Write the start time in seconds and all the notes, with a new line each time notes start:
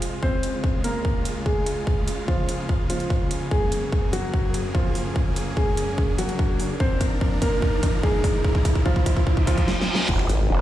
Already playing: F2 C3 F3 G#3 F4, riser
0.02 closed hi-hat
0.23 C#2 C#3 C4 F4 C5, kick
0.43 closed hi-hat
0.64 kick
0.84 A#3 A#4, closed hi-hat
1.05 kick
1.25 closed hi-hat
1.46 G#3 G#4, kick
1.66 closed hi-hat
1.87 kick
2.08 closed hi-hat
2.28 F3 F4, kick
2.49 closed hi-hat
2.69 kick
2.90 F3 F4, closed hi-hat
3.00 closed hi-hat
3.10 kick
3.31 closed hi-hat
3.51 F#2 G#3 A#3 G#4, kick
3.72 closed hi-hat
3.92 kick
4.13 F#3 F#4, closed hi-hat
4.34 kick
4.54 closed hi-hat
4.75 F3 F4, kick
4.95 open hi-hat
5.16 kick
5.36 closed hi-hat
5.57 G#3 G#4, kick
5.77 closed hi-hat
5.98 kick
6.18 F#3 F#4, closed hi-hat
6.29 closed hi-hat
6.39 kick
6.60 open hi-hat
6.80 A#2 F3 C4 D4 A#4 C5, kick
7.01 kick, closed hi-hat
7.21 kick
7.42 A#3 A#4, kick, closed hi-hat
7.62 kick
7.83 kick, closed hi-hat
8.03 G#3 G#4, kick
8.24 kick, open hi-hat
8.44 kick
8.55 kick
8.65 kick, closed hi-hat
8.75 kick
8.86 F3 F4, kick
8.96 kick
9.06 kick, closed hi-hat
9.17 kick
9.27 kick, reverse cymbal
9.37 kick
9.47 F3 F4, kick, closed hi-hat
9.58 kick, closed hi-hat
9.68 snare
9.81 snare
9.95 snare
10.09 F1, kick, crash, impact
10.19 finger snap
10.29 G#1, closed hi-hat
10.50 F1